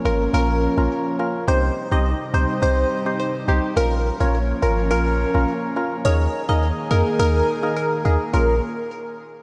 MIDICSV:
0, 0, Header, 1, 5, 480
1, 0, Start_track
1, 0, Tempo, 571429
1, 1243, Time_signature, 4, 2, 24, 8
1, 7918, End_track
2, 0, Start_track
2, 0, Title_t, "Synth pluck"
2, 0, Program_c, 0, 84
2, 46, Note_on_c, 0, 70, 86
2, 129, Note_off_c, 0, 70, 0
2, 286, Note_on_c, 0, 70, 97
2, 630, Note_off_c, 0, 70, 0
2, 1245, Note_on_c, 0, 72, 105
2, 1329, Note_off_c, 0, 72, 0
2, 1613, Note_on_c, 0, 75, 79
2, 1687, Note_off_c, 0, 75, 0
2, 1966, Note_on_c, 0, 72, 86
2, 2049, Note_off_c, 0, 72, 0
2, 2206, Note_on_c, 0, 72, 102
2, 2550, Note_off_c, 0, 72, 0
2, 2684, Note_on_c, 0, 72, 77
2, 2768, Note_off_c, 0, 72, 0
2, 2928, Note_on_c, 0, 67, 78
2, 3011, Note_off_c, 0, 67, 0
2, 3166, Note_on_c, 0, 70, 108
2, 3249, Note_off_c, 0, 70, 0
2, 3532, Note_on_c, 0, 73, 81
2, 3606, Note_off_c, 0, 73, 0
2, 3885, Note_on_c, 0, 70, 85
2, 3968, Note_off_c, 0, 70, 0
2, 4121, Note_on_c, 0, 70, 99
2, 4467, Note_off_c, 0, 70, 0
2, 5081, Note_on_c, 0, 73, 102
2, 5166, Note_off_c, 0, 73, 0
2, 5450, Note_on_c, 0, 75, 75
2, 5525, Note_off_c, 0, 75, 0
2, 5801, Note_on_c, 0, 70, 87
2, 5886, Note_off_c, 0, 70, 0
2, 6044, Note_on_c, 0, 70, 103
2, 6389, Note_off_c, 0, 70, 0
2, 6523, Note_on_c, 0, 70, 78
2, 6607, Note_off_c, 0, 70, 0
2, 6762, Note_on_c, 0, 68, 74
2, 6847, Note_off_c, 0, 68, 0
2, 7001, Note_on_c, 0, 70, 84
2, 7226, Note_off_c, 0, 70, 0
2, 7918, End_track
3, 0, Start_track
3, 0, Title_t, "Synth stab"
3, 0, Program_c, 1, 62
3, 41, Note_on_c, 1, 58, 79
3, 42, Note_on_c, 1, 61, 68
3, 44, Note_on_c, 1, 65, 73
3, 46, Note_on_c, 1, 70, 84
3, 209, Note_off_c, 1, 58, 0
3, 210, Note_off_c, 1, 61, 0
3, 210, Note_off_c, 1, 65, 0
3, 211, Note_off_c, 1, 70, 0
3, 281, Note_on_c, 1, 58, 95
3, 283, Note_on_c, 1, 61, 86
3, 285, Note_on_c, 1, 65, 86
3, 286, Note_on_c, 1, 70, 101
3, 619, Note_off_c, 1, 58, 0
3, 620, Note_off_c, 1, 61, 0
3, 621, Note_off_c, 1, 65, 0
3, 621, Note_off_c, 1, 70, 0
3, 649, Note_on_c, 1, 58, 78
3, 650, Note_on_c, 1, 61, 72
3, 653, Note_on_c, 1, 65, 70
3, 654, Note_on_c, 1, 70, 87
3, 976, Note_off_c, 1, 58, 0
3, 976, Note_off_c, 1, 61, 0
3, 977, Note_off_c, 1, 65, 0
3, 978, Note_off_c, 1, 70, 0
3, 1001, Note_on_c, 1, 58, 73
3, 1003, Note_on_c, 1, 61, 69
3, 1004, Note_on_c, 1, 65, 66
3, 1006, Note_on_c, 1, 70, 81
3, 1224, Note_off_c, 1, 58, 0
3, 1225, Note_off_c, 1, 61, 0
3, 1226, Note_off_c, 1, 65, 0
3, 1227, Note_off_c, 1, 70, 0
3, 1240, Note_on_c, 1, 60, 95
3, 1242, Note_on_c, 1, 63, 88
3, 1243, Note_on_c, 1, 67, 84
3, 1245, Note_on_c, 1, 72, 106
3, 1578, Note_off_c, 1, 60, 0
3, 1579, Note_off_c, 1, 63, 0
3, 1580, Note_off_c, 1, 67, 0
3, 1581, Note_off_c, 1, 72, 0
3, 1607, Note_on_c, 1, 60, 76
3, 1609, Note_on_c, 1, 63, 68
3, 1611, Note_on_c, 1, 67, 70
3, 1612, Note_on_c, 1, 72, 83
3, 1766, Note_off_c, 1, 60, 0
3, 1767, Note_off_c, 1, 63, 0
3, 1768, Note_off_c, 1, 67, 0
3, 1769, Note_off_c, 1, 72, 0
3, 1963, Note_on_c, 1, 60, 78
3, 1964, Note_on_c, 1, 63, 68
3, 1966, Note_on_c, 1, 67, 68
3, 1968, Note_on_c, 1, 72, 81
3, 2130, Note_off_c, 1, 60, 0
3, 2131, Note_off_c, 1, 63, 0
3, 2131, Note_off_c, 1, 67, 0
3, 2133, Note_off_c, 1, 72, 0
3, 2200, Note_on_c, 1, 60, 90
3, 2202, Note_on_c, 1, 63, 84
3, 2203, Note_on_c, 1, 67, 83
3, 2205, Note_on_c, 1, 72, 100
3, 2538, Note_off_c, 1, 60, 0
3, 2539, Note_off_c, 1, 63, 0
3, 2540, Note_off_c, 1, 67, 0
3, 2541, Note_off_c, 1, 72, 0
3, 2569, Note_on_c, 1, 60, 76
3, 2570, Note_on_c, 1, 63, 71
3, 2572, Note_on_c, 1, 67, 71
3, 2573, Note_on_c, 1, 72, 89
3, 2895, Note_off_c, 1, 60, 0
3, 2896, Note_off_c, 1, 63, 0
3, 2897, Note_off_c, 1, 67, 0
3, 2898, Note_off_c, 1, 72, 0
3, 2922, Note_on_c, 1, 60, 76
3, 2923, Note_on_c, 1, 63, 68
3, 2925, Note_on_c, 1, 67, 69
3, 2926, Note_on_c, 1, 72, 87
3, 3144, Note_off_c, 1, 60, 0
3, 3145, Note_off_c, 1, 63, 0
3, 3146, Note_off_c, 1, 67, 0
3, 3147, Note_off_c, 1, 72, 0
3, 3160, Note_on_c, 1, 58, 98
3, 3162, Note_on_c, 1, 61, 88
3, 3164, Note_on_c, 1, 65, 86
3, 3165, Note_on_c, 1, 70, 106
3, 3498, Note_off_c, 1, 58, 0
3, 3499, Note_off_c, 1, 61, 0
3, 3500, Note_off_c, 1, 65, 0
3, 3501, Note_off_c, 1, 70, 0
3, 3528, Note_on_c, 1, 58, 78
3, 3530, Note_on_c, 1, 61, 70
3, 3531, Note_on_c, 1, 65, 72
3, 3533, Note_on_c, 1, 70, 83
3, 3687, Note_off_c, 1, 58, 0
3, 3688, Note_off_c, 1, 61, 0
3, 3689, Note_off_c, 1, 65, 0
3, 3689, Note_off_c, 1, 70, 0
3, 3881, Note_on_c, 1, 58, 78
3, 3883, Note_on_c, 1, 61, 72
3, 3884, Note_on_c, 1, 65, 71
3, 3886, Note_on_c, 1, 70, 89
3, 4049, Note_off_c, 1, 58, 0
3, 4050, Note_off_c, 1, 61, 0
3, 4050, Note_off_c, 1, 65, 0
3, 4051, Note_off_c, 1, 70, 0
3, 4121, Note_on_c, 1, 58, 93
3, 4124, Note_on_c, 1, 61, 84
3, 4125, Note_on_c, 1, 65, 90
3, 4126, Note_on_c, 1, 70, 100
3, 4459, Note_off_c, 1, 58, 0
3, 4460, Note_off_c, 1, 61, 0
3, 4461, Note_off_c, 1, 65, 0
3, 4461, Note_off_c, 1, 70, 0
3, 4487, Note_on_c, 1, 58, 80
3, 4489, Note_on_c, 1, 61, 76
3, 4491, Note_on_c, 1, 65, 75
3, 4492, Note_on_c, 1, 70, 87
3, 4646, Note_off_c, 1, 58, 0
3, 4647, Note_off_c, 1, 61, 0
3, 4648, Note_off_c, 1, 65, 0
3, 4649, Note_off_c, 1, 70, 0
3, 4840, Note_on_c, 1, 58, 77
3, 4842, Note_on_c, 1, 61, 66
3, 4843, Note_on_c, 1, 65, 71
3, 4846, Note_on_c, 1, 70, 84
3, 5009, Note_off_c, 1, 58, 0
3, 5009, Note_off_c, 1, 61, 0
3, 5010, Note_off_c, 1, 65, 0
3, 5011, Note_off_c, 1, 70, 0
3, 5081, Note_on_c, 1, 58, 97
3, 5084, Note_on_c, 1, 63, 84
3, 5085, Note_on_c, 1, 68, 86
3, 5087, Note_on_c, 1, 70, 110
3, 5419, Note_off_c, 1, 58, 0
3, 5420, Note_off_c, 1, 63, 0
3, 5421, Note_off_c, 1, 68, 0
3, 5422, Note_off_c, 1, 70, 0
3, 5448, Note_on_c, 1, 58, 79
3, 5449, Note_on_c, 1, 63, 72
3, 5451, Note_on_c, 1, 68, 72
3, 5454, Note_on_c, 1, 70, 87
3, 5607, Note_off_c, 1, 58, 0
3, 5607, Note_off_c, 1, 63, 0
3, 5608, Note_off_c, 1, 68, 0
3, 5610, Note_off_c, 1, 70, 0
3, 5801, Note_on_c, 1, 58, 81
3, 5803, Note_on_c, 1, 63, 74
3, 5804, Note_on_c, 1, 68, 74
3, 5806, Note_on_c, 1, 70, 88
3, 5969, Note_off_c, 1, 58, 0
3, 5970, Note_off_c, 1, 63, 0
3, 5970, Note_off_c, 1, 68, 0
3, 5972, Note_off_c, 1, 70, 0
3, 6041, Note_on_c, 1, 58, 92
3, 6043, Note_on_c, 1, 63, 89
3, 6044, Note_on_c, 1, 68, 85
3, 6045, Note_on_c, 1, 70, 104
3, 6379, Note_off_c, 1, 58, 0
3, 6380, Note_off_c, 1, 63, 0
3, 6380, Note_off_c, 1, 68, 0
3, 6381, Note_off_c, 1, 70, 0
3, 6407, Note_on_c, 1, 58, 82
3, 6408, Note_on_c, 1, 63, 72
3, 6411, Note_on_c, 1, 68, 72
3, 6412, Note_on_c, 1, 70, 88
3, 6734, Note_off_c, 1, 58, 0
3, 6735, Note_off_c, 1, 63, 0
3, 6736, Note_off_c, 1, 68, 0
3, 6737, Note_off_c, 1, 70, 0
3, 6760, Note_on_c, 1, 58, 77
3, 6762, Note_on_c, 1, 63, 70
3, 6764, Note_on_c, 1, 68, 70
3, 6765, Note_on_c, 1, 70, 85
3, 6984, Note_off_c, 1, 58, 0
3, 6985, Note_off_c, 1, 63, 0
3, 6986, Note_off_c, 1, 68, 0
3, 6986, Note_off_c, 1, 70, 0
3, 6999, Note_on_c, 1, 58, 86
3, 7002, Note_on_c, 1, 61, 77
3, 7004, Note_on_c, 1, 65, 80
3, 7008, Note_on_c, 1, 70, 92
3, 7182, Note_off_c, 1, 58, 0
3, 7184, Note_off_c, 1, 61, 0
3, 7185, Note_off_c, 1, 65, 0
3, 7187, Note_off_c, 1, 70, 0
3, 7918, End_track
4, 0, Start_track
4, 0, Title_t, "Analog synth pad"
4, 0, Program_c, 2, 89
4, 0, Note_on_c, 2, 53, 84
4, 0, Note_on_c, 2, 58, 77
4, 0, Note_on_c, 2, 61, 94
4, 1224, Note_off_c, 2, 53, 0
4, 1224, Note_off_c, 2, 58, 0
4, 1225, Note_off_c, 2, 61, 0
4, 1243, Note_on_c, 2, 48, 82
4, 1244, Note_on_c, 2, 63, 94
4, 1245, Note_on_c, 2, 55, 75
4, 3144, Note_off_c, 2, 48, 0
4, 3144, Note_off_c, 2, 63, 0
4, 3145, Note_off_c, 2, 55, 0
4, 3163, Note_on_c, 2, 58, 78
4, 3163, Note_on_c, 2, 61, 92
4, 3164, Note_on_c, 2, 53, 84
4, 5064, Note_off_c, 2, 53, 0
4, 5064, Note_off_c, 2, 58, 0
4, 5064, Note_off_c, 2, 61, 0
4, 5082, Note_on_c, 2, 51, 86
4, 5083, Note_on_c, 2, 58, 74
4, 5083, Note_on_c, 2, 68, 96
4, 6984, Note_off_c, 2, 51, 0
4, 6984, Note_off_c, 2, 58, 0
4, 6984, Note_off_c, 2, 68, 0
4, 7918, End_track
5, 0, Start_track
5, 0, Title_t, "808-style bass"
5, 0, Program_c, 3, 38
5, 42, Note_on_c, 3, 32, 92
5, 230, Note_off_c, 3, 32, 0
5, 281, Note_on_c, 3, 34, 114
5, 569, Note_off_c, 3, 34, 0
5, 650, Note_on_c, 3, 34, 87
5, 738, Note_off_c, 3, 34, 0
5, 1242, Note_on_c, 3, 36, 109
5, 1430, Note_off_c, 3, 36, 0
5, 1610, Note_on_c, 3, 36, 92
5, 1798, Note_off_c, 3, 36, 0
5, 1963, Note_on_c, 3, 37, 90
5, 2063, Note_off_c, 3, 37, 0
5, 2204, Note_on_c, 3, 36, 108
5, 2391, Note_off_c, 3, 36, 0
5, 2923, Note_on_c, 3, 36, 89
5, 3023, Note_off_c, 3, 36, 0
5, 3163, Note_on_c, 3, 34, 112
5, 3451, Note_off_c, 3, 34, 0
5, 3532, Note_on_c, 3, 34, 105
5, 3808, Note_off_c, 3, 34, 0
5, 3885, Note_on_c, 3, 32, 92
5, 4125, Note_on_c, 3, 34, 115
5, 4138, Note_off_c, 3, 32, 0
5, 4412, Note_off_c, 3, 34, 0
5, 4491, Note_on_c, 3, 34, 85
5, 4579, Note_off_c, 3, 34, 0
5, 5084, Note_on_c, 3, 39, 120
5, 5272, Note_off_c, 3, 39, 0
5, 5452, Note_on_c, 3, 39, 86
5, 5639, Note_off_c, 3, 39, 0
5, 5805, Note_on_c, 3, 41, 94
5, 5904, Note_off_c, 3, 41, 0
5, 6043, Note_on_c, 3, 39, 113
5, 6231, Note_off_c, 3, 39, 0
5, 6765, Note_on_c, 3, 39, 92
5, 6864, Note_off_c, 3, 39, 0
5, 7004, Note_on_c, 3, 34, 97
5, 7227, Note_off_c, 3, 34, 0
5, 7918, End_track
0, 0, End_of_file